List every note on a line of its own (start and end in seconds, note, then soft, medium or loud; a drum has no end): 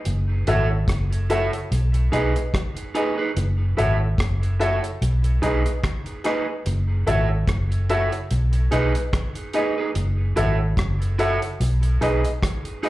0.05 0.45 F#1 loud
0.05 closed hi-hat medium
0.47 0.86 G#1 medium
0.47 0.68 E4 medium
0.47 0.68 F#4 medium
0.47 0.68 A4 medium
0.47 0.68 C#5 loud
0.47 0.68 E5 loud
0.47 closed hi-hat medium
0.88 1.49 F#1 medium
0.88 kick loud
0.88 cross-stick loud
0.88 closed hi-hat medium
1.12 closed hi-hat soft
1.30 1.50 E4 medium
1.30 1.50 F#4 medium
1.30 1.50 A4 medium
1.30 1.51 C#5 loud
1.30 1.51 E5 medium
1.30 closed hi-hat medium
1.53 closed hi-hat soft
1.72 2.10 B1 loud
1.72 closed hi-hat medium
1.94 closed hi-hat soft
2.12 2.34 B1 medium
2.12 2.32 D#4 medium
2.12 2.32 G#4 medium
2.12 2.33 G#4 medium
2.12 2.33 B4 medium
2.12 2.33 D#5 medium
2.12 closed hi-hat medium
2.36 2.43 B4 soft
2.36 2.43 D#5 soft
2.36 closed hi-hat medium
2.54 kick loud
2.54 cross-stick loud
2.54 closed hi-hat medium
2.77 closed hi-hat medium
2.95 3.15 D#4 medium
2.95 3.15 G#4 medium
2.95 3.15 B4 medium
2.95 3.16 B4 medium
2.95 3.16 D#5 medium
2.95 closed hi-hat medium
3.18 3.31 D#4 soft
3.18 3.30 G#4 medium
3.18 3.30 B4 medium
3.37 3.75 F#1 loud
3.37 closed hi-hat medium
3.77 4.16 G#1 medium
3.77 3.97 E4 medium
3.77 3.97 F#4 medium
3.77 3.98 A4 medium
3.77 3.98 C#5 medium
3.77 3.98 E5 medium
3.77 closed hi-hat medium
4.18 4.79 F#1 medium
4.18 kick loud
4.18 cross-stick loud
4.18 closed hi-hat medium
4.43 closed hi-hat soft
4.59 4.80 E4 medium
4.59 4.80 F#4 medium
4.59 4.80 A4 medium
4.59 4.81 C#5 medium
4.59 4.81 E5 medium
4.59 closed hi-hat medium
4.84 closed hi-hat soft
5.02 5.40 B1 medium
5.02 closed hi-hat medium
5.24 closed hi-hat soft
5.42 5.64 B1 medium
5.42 5.62 D#4 medium
5.42 5.62 G#4 medium
5.42 5.63 G#4 medium
5.42 5.62 B4 medium
5.42 5.63 B4 medium
5.42 5.63 D#5 medium
5.42 closed hi-hat medium
5.66 5.73 B4 soft
5.66 5.73 D#5 soft
5.66 closed hi-hat medium
5.84 kick loud
5.84 cross-stick loud
5.84 closed hi-hat medium
6.06 closed hi-hat soft
6.24 6.45 D#4 medium
6.24 6.44 G#4 medium
6.24 6.45 G#4 medium
6.24 6.45 B4 medium
6.24 6.46 B4 medium
6.24 6.45 D#5 medium
6.24 cross-stick medium
6.24 closed hi-hat medium
6.66 7.05 F#1 loud
6.66 closed hi-hat medium
7.06 7.46 G#1 medium
7.06 7.27 E4 medium
7.06 7.27 F#4 medium
7.06 7.27 A4 medium
7.06 7.28 A4 medium
7.06 7.28 C#5 medium
7.06 7.27 E5 loud
7.06 closed hi-hat medium
7.48 8.08 F#1 medium
7.48 kick loud
7.48 cross-stick loud
7.48 closed hi-hat medium
7.72 closed hi-hat soft
7.89 8.09 E4 medium
7.89 8.09 F#4 medium
7.89 8.10 A4 medium
7.89 8.10 C#5 medium
7.89 8.10 E5 loud
7.89 closed hi-hat medium
8.12 closed hi-hat soft
8.31 8.69 B1 medium
8.31 closed hi-hat medium
8.53 closed hi-hat soft
8.71 8.94 B1 medium
8.71 8.92 D#4 medium
8.71 8.91 G#4 medium
8.71 8.92 G#4 medium
8.71 8.92 B4 medium
8.71 8.93 B4 loud
8.71 8.92 D#5 medium
8.71 closed hi-hat medium
8.95 9.02 B4 soft
8.95 9.02 D#5 soft
8.95 closed hi-hat medium
9.13 kick loud
9.13 cross-stick loud
9.13 closed hi-hat medium
9.35 closed hi-hat medium
9.53 9.74 D#4 medium
9.53 9.74 G#4 medium
9.53 9.74 B4 medium
9.53 9.75 B4 medium
9.53 9.75 D#5 medium
9.53 closed hi-hat medium
9.78 9.90 D#4 soft
9.78 9.90 G#4 medium
9.78 9.90 B4 medium
9.95 10.34 F#1 loud
9.95 closed hi-hat medium
10.36 10.75 G#1 medium
10.36 10.56 E4 medium
10.36 10.56 F#4 medium
10.36 10.57 A4 medium
10.36 10.57 C#5 medium
10.36 10.57 E5 medium
10.36 closed hi-hat medium
10.77 11.38 F#1 medium
10.77 kick loud
10.77 cross-stick loud
10.77 closed hi-hat medium
11.02 closed hi-hat soft
11.19 11.39 E4 medium
11.19 11.39 F#4 medium
11.19 11.39 A4 medium
11.19 11.39 A4 loud
11.19 11.39 C#5 medium
11.19 11.39 E5 loud
11.19 closed hi-hat medium
11.42 closed hi-hat soft
11.60 11.99 B1 loud
11.60 closed hi-hat loud
11.83 closed hi-hat soft
12.01 12.23 B1 medium
12.01 12.21 D#4 medium
12.01 12.21 G#4 medium
12.01 12.22 B4 medium
12.01 12.22 D#5 medium
12.01 closed hi-hat medium
12.25 12.32 B4 soft
12.25 12.32 D#5 soft
12.25 closed hi-hat medium
12.43 kick loud
12.43 cross-stick loud
12.43 closed hi-hat medium
12.65 closed hi-hat medium
12.83 12.89 D#4 medium
12.83 12.89 G#4 medium
12.83 12.89 B4 medium
12.83 12.89 D#5 medium
12.83 open hi-hat soft